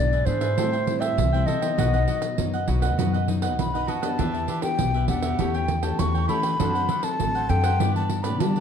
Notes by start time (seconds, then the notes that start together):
Already playing: B1 G#2 E3 B3 D4 D5
0.12 G#4 B4 E5, pandeiro
0.25 G#2 E3 B3 D4 G#4 B4 C5 E5, pandeiro
0.41 G#4 B4 E5, pandeiro
0.57 A2 G3 C4 E4 A4 C5 E5 G5, pandeiro
0.72 C5 E5 G5, pandeiro
0.86 G3 C4 E4, muted cavaquinho stroke, pandeiro
1.00 C5 E5 G5, pandeiro
1.17 C2 E3, pandeiro
1.33 G3 C4 E4 C5 E5 G5, pandeiro
1.46 A4 C5 D#5 E5 G5, pandeiro
1.62 F#3 B3 D#4 C5 E5 G5, pandeiro
1.78 B1 B2 F#4 B4 D#5 F#5, pandeiro
1.93 F#3 B3 D#4 B4 D#5 F#5, pandeiro
2.07 F#4 B4 D#5 F#5, pandeiro
2.22 muted cavaquinho stroke, pandeiro
2.38 F#2 F#3 B3 D#4, pandeiro
2.53 B4 D#5 F#5, pandeiro
2.68 B1 F#3 B3 D#4 F#4 B4 D#5 F#5, pandeiro
2.82 B4 D#5 F#5, pandeiro
2.98 F#2 B2 F#3 B3 D#4 F#4 B4 D#5 F#5, pandeiro
3.13 B4 D#5 F#5, pandeiro
3.28 F#3 B3 D#4, muted cavaquinho stroke, pandeiro
3.42 B4 D#5 F#5, pandeiro
3.59 B1 F#2 B5, pandeiro
3.74 F#3 B3 D#4 B4 D#5 F#5, pandeiro
3.87 F#4 B4 D#5 F#5 A5, pandeiro
4.02 B3 D4 G4 B4 D#5 F#5, pandeiro
4.18 E2 E3 D4 G4 B4 E5, pandeiro
4.33 G4 B4 E5, pandeiro
4.47 D4 G4 B4 E5, pandeiro
4.62 B3 D4 G4 G5, muted cavaquinho stroke, pandeiro
4.79 B1 B2, pandeiro
4.94 G4 B4 E5, pandeiro
5.08 E2 B3 D4 G4 B4 E5 F#5, pandeiro
5.22 G4 B4 E5, pandeiro
5.38 E2 E3 A3 C#4 E4 G4 A4 C#5 G5, pandeiro
5.54 A4 C#5 G5, pandeiro
5.68 muted cavaquinho stroke, pandeiro
5.83 A3 C#4 G4 A4 C#5 G5 A5, pandeiro
5.99 E2 E3 C#6, pandeiro
6.14 A4 C#5 G5, pandeiro
6.28 A3 C#4 E4 G4 A4 C#5 G5 B5, pandeiro
6.43 A4 C#5 G5, pandeiro
6.59 F#2 F#3 C4 D4 A4 C5 F#5, pandeiro
6.74 A4 C5 F#5, pandeiro
6.89 D4 A4 C5 F#5, pandeiro
7.03 C4 D4 A4 A5, muted cavaquinho stroke, pandeiro
7.20 A1 F#3, pandeiro
7.35 A4 C5 F#5, pandeiro
7.49 F#2 C4 D4 A4 C5 F#5 G5, pandeiro
7.64 A4 C5 F#5, pandeiro
7.80 G2 E3 B3 D4 E4 G4 B4 D5, pandeiro
7.95 G4 B4 D5 A5, pandeiro
8.10 muted cavaquinho stroke, pandeiro
8.23 E3 B3 D4 G4 B4 D5 B5, pandeiro
8.40 D3 G3 A5, pandeiro
8.56 B4 D5, pandeiro